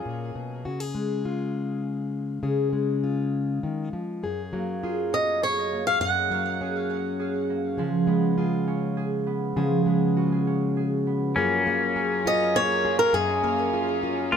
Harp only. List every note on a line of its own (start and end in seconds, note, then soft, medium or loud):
4.53 5.72 A#3 soft
4.83 5.41 G#4 soft
5.13 6.89 C#4 soft
5.42 6.60 G#4 medium
5.72 6.31 A#3 soft
6.31 7.49 A#3 soft
6.61 7.19 G#4 medium
6.90 8.67 C#4 soft
7.20 8.38 G#4 soft
7.50 8.14 A#3 soft
7.79 9.56 F3 medium
8.08 9.26 B3 soft
8.38 8.96 G#4 medium
8.67 10.47 C#4 medium
8.97 10.31 G#4 medium
9.26 9.87 B3 soft
9.56 11.42 F3 medium
9.87 11.06 B3 soft
10.17 12.60 F#4 medium
10.32 10.76 G#4 soft
10.47 12.25 C#4 soft
10.77 11.96 G#4 soft
11.07 11.72 B3 soft
11.66 12.85 A#3 soft
11.96 12.55 G#4 medium
12.26 14.03 C#4 medium
12.56 13.74 G#4 medium
12.85 13.44 A#3 medium
13.45 14.37 A#3 medium
13.74 14.37 G#4 medium
14.04 14.37 C#4 medium
14.33 14.37 F#4 medium